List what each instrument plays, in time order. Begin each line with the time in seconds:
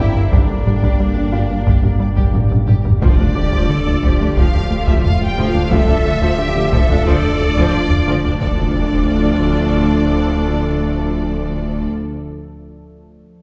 Already playing: sub bass G1, trombone section D3 A#3, ambient pad G3 A#3 G4 D5, french horn section C4, felt piano C4 C5, violin section G4
0.00 felt piano D4 D5, cello section E4, viola section E4, violin section E5
0.15 double bass section G1, analog synth bass G2, violin section A#4
0.31 double bass section G1, analog synth bass G2, french horn section A#3, cello section D4, viola section D4, violin section G4 D5, taiko
0.48 double bass section G1, analog synth bass G2, violin section A#4
0.65 double bass section G1, analog synth bass G3, violin section D5, taiko low-mid
0.82 double bass section G1, analog synth bass G2, violin section G4, taiko
0.99 double bass section G1, analog synth bass G3, violin section A#4
1.16 double bass section G1, analog synth bass G2, violin section D5
1.32 double bass section G1, analog synth bass G2, felt piano F4 F5, violin section G4
1.50 double bass section G1, analog synth bass G2, violin section A#4
1.66 double bass section G1, analog synth bass G2, violin section G4, taiko
1.83 double bass section G1, analog synth bass G2, violin section A#4, taiko low-mid
2.00 double bass section G1, analog synth bass G3, violin section D5
2.15 double bass section G1, analog synth bass G2, violin section G4, taiko
2.32 double bass section G1, analog synth bass G2, violin section A#4, taiko low-mid
2.49 double bass section G1, analog synth bass G2, violin section D5, taiko low-mid
2.66 double bass section G1, analog synth bass G2, violin section G4, taiko low-mid
2.81 double bass section G1, analog synth bass G2, violin section A#4, taiko low
2.99 sub bass D1, analog synth bass D2, double bass section D2, ambient pad F3 A3 A4 D5, viola section F3 F4, trombone section A3, french horn section D4, cello section F4, violin section D5, taiko, impact
3.04 trombone section F3
3.19 analog synth bass D2, double bass section D2, viola section D4
3.35 double bass section D2, analog synth bass D3, viola section A3, cello section G4, felt piano D6
3.53 analog synth bass D2, double bass section D2, viola section F3
3.69 analog synth bass D3, cello section A4
3.87 analog synth bass D2, double bass section D2, viola section A3
4.03 double bass section D2, analog synth bass D2, viola section F3, cello section G4, taiko
4.20 double bass section D2, analog synth bass D2, viola section D4
4.36 analog synth bass D2, double bass section D2, viola section F3, french horn section F4, violin section F5, taiko
4.54 analog synth bass D2, taiko low
4.70 analog synth bass D2, double bass section D2, viola section A3
4.86 double bass section D2, analog synth bass D2, viola section F3, french horn section E4, violin section E5, taiko
5.01 analog synth bass D2, cello section F4, french horn section F4, violin section F5, taiko low
5.21 analog synth bass D2, taiko low
5.25 french horn section G4, violin section G5
5.38 double bass section D2, analog synth bass D2, viola section F3
5.48 french horn section F4, violin section F5
5.54 analog synth bass D2, double bass section D2, viola section D4
5.69 analog synth bass D2, double bass section D2, viola section F3, french horn section F4, cello section A4, violin section E5, taiko
5.87 analog synth bass D2, double bass section D2, viola section D4
6.04 double bass section D2, analog synth bass D3, viola section A3
6.22 double bass section D2, analog synth bass D2, viola section F3
6.38 analog synth bass D3, cello section G4
6.55 analog synth bass D2, double bass section D2, viola section A3
6.72 analog synth bass D2, double bass section D2, viola section F3, cello section A4, taiko
6.89 analog synth bass D2, double bass section D2, viola section D4
7.05 analog synth bass D2, double bass section D2, viola section F3, french horn section D4, violin section D5, taiko
7.23 analog synth bass D2, taiko low
7.40 double bass section D2, analog synth bass D2, viola section A3
7.56 double bass section D2, analog synth bass D2, viola section F3, taiko
7.74 analog synth bass D2, cello section F4, taiko low
7.90 analog synth bass D2, taiko low
8.07 analog synth bass D2, double bass section D2, viola section F3
8.24 analog synth bass D2, double bass section D2, viola section D4
8.40 sub bass D1, double bass section D2, cello section D2, ambient pad F3 A3 A4 D5, trombone section F3 A3, french horn section D4, viola section D4 F4, violin section A4 D5, impact